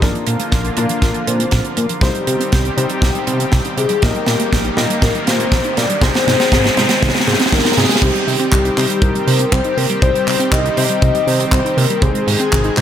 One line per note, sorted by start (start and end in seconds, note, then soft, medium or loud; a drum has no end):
0.02 0.11 A#1 loud
0.02 0.07 A#2 medium
0.02 2.00 D3 medium
0.02 2.00 F3 medium
0.02 2.00 A#3 medium
0.02 0.74 A#3 medium
0.02 0.74 D4 medium
0.02 2.00 F4 medium
0.02 0.74 F4 medium
0.02 0.98 A#4 loud
0.02 0.74 D5 medium
0.02 kick loud
0.02 snare medium
0.02 closed hi-hat medium
0.02 riser medium
0.15 0.20 F3 medium
0.15 closed hi-hat soft
0.27 0.32 A#2 medium
0.27 0.36 A#2 medium
0.27 closed hi-hat loud
0.40 0.48 A#3 loud
0.40 closed hi-hat medium
0.52 0.70 A#1 medium
0.52 0.57 A#2 medium
0.52 kick loud
0.52 snare soft
0.52 closed hi-hat medium
0.65 0.73 D4 medium
0.65 closed hi-hat soft
0.77 0.86 A#2 medium
0.77 0.86 A#2 loud
0.77 1.99 A#3 medium
0.77 1.99 D4 medium
0.77 1.99 F4 medium
0.77 1.99 D5 loud
0.77 closed hi-hat loud
0.89 1.02 F3 medium
0.89 closed hi-hat medium
1.02 1.11 A#1 medium
1.02 1.07 A#2 medium
1.02 1.26 A#4 loud
1.02 kick loud
1.02 snare medium
1.02 closed hi-hat medium
1.14 1.20 F3 medium
1.14 closed hi-hat soft
1.27 1.32 A#2 medium
1.27 1.45 A#2 loud
1.27 1.79 C5 loud
1.27 closed hi-hat loud
1.40 1.48 A#3 loud
1.40 closed hi-hat medium
1.51 1.61 A#1 medium
1.51 1.57 A#2 medium
1.51 kick loud
1.51 snare medium
1.51 closed hi-hat medium
1.65 1.73 D4 medium
1.65 closed hi-hat soft
1.77 1.86 A#2 medium
1.77 2.04 A#4 loud
1.77 closed hi-hat medium
1.89 2.02 F3 medium
1.89 closed hi-hat medium
2.01 2.11 C2 loud
2.01 2.07 C3 medium
2.01 4.00 D#3 medium
2.01 4.00 G3 medium
2.01 2.74 G3 medium
2.01 4.00 C4 medium
2.01 2.74 C4 medium
2.01 2.74 D#4 medium
2.01 5.98 G4 medium
2.01 3.02 G4 medium
2.01 2.74 C5 loud
2.01 kick loud
2.01 snare medium
2.01 closed hi-hat medium
2.15 2.20 G3 medium
2.15 closed hi-hat soft
2.27 2.36 C3 medium
2.27 2.32 C3 medium
2.27 closed hi-hat loud
2.40 2.48 C4 loud
2.40 closed hi-hat medium
2.52 2.71 C2 medium
2.52 2.57 C3 medium
2.52 kick loud
2.52 snare medium
2.52 closed hi-hat medium
2.65 2.73 D#4 medium
2.65 closed hi-hat soft
2.77 2.86 C3 medium
2.77 3.99 G3 medium
2.77 3.99 C4 medium
2.77 3.99 D#4 medium
2.77 3.99 C5 medium
2.77 closed hi-hat loud
2.90 3.02 G3 medium
2.90 closed hi-hat medium
3.02 3.11 C2 loud
3.02 3.07 C3 medium
3.02 kick loud
3.02 snare medium
3.02 closed hi-hat medium
3.15 3.20 G3 medium
3.15 closed hi-hat medium
3.27 3.32 C3 medium
3.27 3.45 C3 loud
3.27 closed hi-hat loud
3.40 3.48 C4 loud
3.40 closed hi-hat medium
3.52 3.62 C2 medium
3.52 3.57 C3 medium
3.52 kick loud
3.52 snare medium
3.52 closed hi-hat medium
3.65 3.73 D#4 medium
3.65 closed hi-hat soft
3.77 3.86 C3 medium
3.77 4.04 G#4 medium
3.77 closed hi-hat medium
3.89 4.02 G3 medium
3.89 closed hi-hat medium
4.02 4.12 A#1 loud
4.02 4.07 A#2 medium
4.02 7.98 D#3 medium
4.02 6.00 G3 medium
4.02 4.74 A#3 medium
4.02 6.00 A#3 medium
4.02 4.74 D#4 medium
4.02 4.74 G4 medium
4.02 5.02 A#4 loud
4.02 4.74 D#5 medium
4.02 kick loud
4.02 snare medium
4.02 closed hi-hat medium
4.15 4.20 G3 medium
4.15 closed hi-hat soft
4.26 4.32 A#2 medium
4.26 4.36 A#2 medium
4.26 snare medium
4.26 closed hi-hat medium
4.40 4.48 A#3 loud
4.40 closed hi-hat medium
4.52 4.71 A#1 medium
4.52 4.57 A#2 medium
4.52 kick loud
4.52 snare medium
4.52 closed hi-hat medium
4.65 4.73 D#4 medium
4.65 closed hi-hat soft
4.77 4.86 A#2 medium
4.77 5.99 A#3 loud
4.77 5.99 D#4 medium
4.77 5.99 G4 medium
4.77 5.99 D#5 loud
4.77 snare medium
4.77 closed hi-hat loud
4.90 5.02 G3 medium
4.90 closed hi-hat medium
5.02 5.11 A#1 medium
5.02 5.07 A#2 medium
5.02 5.14 A#4 loud
5.02 kick loud
5.02 snare medium
5.02 closed hi-hat medium
5.15 5.20 G3 medium
5.15 closed hi-hat soft
5.27 5.32 A#2 medium
5.27 5.46 A#2 medium
5.27 5.79 C5 loud
5.27 snare medium
5.27 closed hi-hat loud
5.40 5.48 A#3 loud
5.40 closed hi-hat medium
5.52 5.61 A#1 medium
5.52 5.57 A#2 medium
5.52 kick loud
5.52 snare loud
5.52 closed hi-hat medium
5.64 5.73 D#4 medium
5.64 closed hi-hat soft
5.77 5.86 A#2 medium
5.77 5.86 A#2 loud
5.77 6.04 D5 loud
5.77 snare medium
5.77 closed hi-hat loud
5.90 6.02 G3 medium
5.90 closed hi-hat medium
6.01 6.11 G#1 loud
6.01 6.07 C3 medium
6.01 8.00 G#3 medium
6.01 6.74 G#3 medium
6.01 8.00 C4 medium
6.01 6.74 C4 medium
6.01 6.74 D#4 medium
6.01 8.00 G#4 medium
6.01 6.77 C5 loud
6.01 6.74 C5 loud
6.01 kick loud
6.01 snare loud
6.01 closed hi-hat medium
6.14 6.20 G#3 medium
6.14 snare medium
6.14 closed hi-hat soft
6.27 6.36 G#2 medium
6.27 6.32 C3 medium
6.27 snare loud
6.27 closed hi-hat medium
6.40 6.48 C4 loud
6.40 snare medium
6.40 closed hi-hat medium
6.52 6.70 G#1 medium
6.52 6.57 C3 medium
6.52 kick loud
6.52 snare loud
6.52 closed hi-hat medium
6.64 6.73 D#4 medium
6.64 snare medium
6.64 closed hi-hat soft
6.77 6.86 G#2 medium
6.77 6.86 C3 medium
6.77 7.25 G#3 medium
6.77 7.25 C4 medium
6.77 7.25 D#4 medium
6.77 7.25 C5 loud
6.77 snare loud
6.77 closed hi-hat medium
6.89 7.02 G#3 medium
6.89 snare medium
6.89 closed hi-hat medium
7.02 7.12 G#1 medium
7.02 7.07 C3 medium
7.02 kick loud
7.02 snare loud
7.02 closed hi-hat medium
7.09 snare medium
7.14 7.20 G#3 medium
7.14 snare medium
7.14 closed hi-hat soft
7.20 snare medium
7.27 7.36 G#2 medium
7.27 7.32 C3 medium
7.27 7.99 G#3 medium
7.27 7.99 C4 medium
7.27 7.99 D#4 medium
7.27 7.99 C5 medium
7.27 snare loud
7.27 closed hi-hat medium
7.33 snare medium
7.40 7.48 C4 loud
7.40 snare medium
7.40 closed hi-hat medium
7.46 snare loud
7.52 7.61 G#1 medium
7.52 7.57 C3 medium
7.52 7.79 A#4 medium
7.52 kick loud
7.52 snare loud
7.52 closed hi-hat medium
7.59 snare medium
7.65 7.73 D#4 medium
7.65 snare medium
7.65 closed hi-hat soft
7.72 snare medium
7.77 7.86 G#2 loud
7.77 7.86 C3 medium
7.77 8.04 G#4 medium
7.77 snare loud
7.77 closed hi-hat loud
7.84 snare medium
7.89 8.02 G#3 medium
7.89 snare medium
7.89 closed hi-hat medium
7.96 snare loud
8.02 8.11 C2 loud
8.02 8.07 C3 medium
8.02 12.81 D#3 medium
8.02 11.98 G3 medium
8.02 8.74 G3 medium
8.02 12.81 C4 medium
8.02 8.74 C4 medium
8.02 8.74 D#4 medium
8.02 11.98 G4 medium
8.02 8.52 G4 medium
8.02 8.74 C5 medium
8.02 kick loud
8.02 closed hi-hat medium
8.02 crash loud
8.15 8.20 G3 medium
8.15 closed hi-hat soft
8.27 8.32 C3 medium
8.27 8.36 C3 medium
8.27 open hi-hat loud
8.39 8.48 C4 loud
8.39 closed hi-hat medium
8.52 8.70 C2 medium
8.52 8.57 C3 medium
8.52 9.04 G4 medium
8.52 kick loud
8.52 clap loud
8.52 closed hi-hat medium
8.65 8.73 D#4 medium
8.65 closed hi-hat soft
8.77 8.86 C3 medium
8.77 9.99 G3 medium
8.77 9.99 C4 medium
8.77 9.99 D#4 medium
8.77 9.99 C5 loud
8.77 clap medium
8.77 open hi-hat loud
8.90 9.02 G3 medium
8.90 closed hi-hat medium
9.02 9.11 C2 loud
9.02 9.07 C3 medium
9.02 9.54 A#4 medium
9.02 kick loud
9.02 closed hi-hat medium
9.15 9.20 G3 medium
9.15 closed hi-hat soft
9.27 9.45 C3 medium
9.27 9.32 C3 medium
9.27 open hi-hat loud
9.39 9.48 C4 loud
9.39 closed hi-hat medium
9.52 9.61 C2 medium
9.52 9.57 C3 medium
9.52 9.79 C5 medium
9.52 kick loud
9.52 clap loud
9.52 closed hi-hat medium
9.64 9.73 D#4 medium
9.64 closed hi-hat soft
9.77 9.86 C3 medium
9.77 10.02 A#4 loud
9.77 open hi-hat loud
9.90 10.02 G3 medium
9.90 closed hi-hat medium
10.02 10.11 C2 loud
10.02 10.07 C3 medium
10.02 10.74 G3 medium
10.02 10.74 C4 medium
10.02 10.74 D#4 medium
10.02 10.74 C5 loud
10.02 10.26 C5 medium
10.02 kick loud
10.02 closed hi-hat medium
10.15 10.20 G3 medium
10.15 closed hi-hat soft
10.27 10.32 C3 medium
10.27 10.36 C3 medium
10.27 10.54 C5 medium
10.27 clap medium
10.27 open hi-hat loud
10.40 10.48 C4 loud
10.40 closed hi-hat medium
10.52 10.70 C2 medium
10.52 10.57 C3 medium
10.52 11.02 D#5 medium
10.52 kick loud
10.52 clap loud
10.52 closed hi-hat medium
10.65 10.73 D#4 medium
10.65 closed hi-hat soft
10.77 10.86 C3 medium
10.77 10.86 C3 loud
10.77 11.99 G3 medium
10.77 11.99 C4 medium
10.77 11.99 D#4 medium
10.77 11.99 C5 loud
10.77 open hi-hat loud
10.89 11.02 G3 medium
10.89 closed hi-hat medium
11.02 11.11 C2 loud
11.02 11.07 C3 medium
11.02 11.54 D#5 loud
11.02 kick loud
11.02 closed hi-hat medium
11.15 11.20 G3 medium
11.15 closed hi-hat soft
11.27 11.32 C3 medium
11.27 11.45 C3 medium
11.27 open hi-hat loud
11.40 11.48 C4 loud
11.40 closed hi-hat medium
11.52 11.61 C2 medium
11.52 11.57 C3 medium
11.52 11.79 C5 loud
11.52 kick loud
11.52 clap loud
11.52 closed hi-hat medium
11.65 11.73 D#4 medium
11.65 closed hi-hat soft
11.77 11.86 C3 medium
11.77 12.04 A#4 loud
11.77 open hi-hat loud
11.90 12.02 G3 medium
11.90 closed hi-hat medium
12.02 12.11 G#1 loud
12.02 12.07 C3 medium
12.02 12.81 G#3 medium
12.02 12.74 G#3 medium
12.02 12.74 C4 medium
12.02 12.74 D#4 medium
12.02 12.81 G#4 medium
12.02 12.52 G#4 loud
12.02 12.74 C5 medium
12.02 kick loud
12.02 closed hi-hat medium
12.15 12.20 G#3 medium
12.15 closed hi-hat soft
12.27 12.36 G#2 medium
12.27 12.32 C3 medium
12.27 open hi-hat loud
12.39 12.48 C4 loud
12.39 closed hi-hat medium
12.52 12.71 G#1 medium
12.52 12.57 C3 medium
12.52 12.81 G#4 medium
12.52 kick loud
12.52 clap loud
12.52 closed hi-hat medium
12.64 12.73 D#4 medium
12.64 closed hi-hat soft
12.77 12.81 G#2 loud
12.77 12.81 C3 medium
12.77 12.81 G#3 medium
12.77 12.81 C4 medium
12.77 12.81 D#4 medium
12.77 12.81 C5 loud
12.77 clap medium
12.77 open hi-hat loud